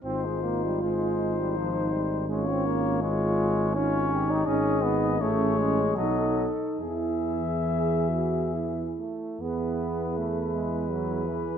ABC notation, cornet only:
X:1
M:3/4
L:1/8
Q:1/4=80
K:Dblyd
V:1 name="Cornet"
c2 c4 | d2 d2 d2 | [K:E] d2 c2 d z | e4- e z |
B6 |]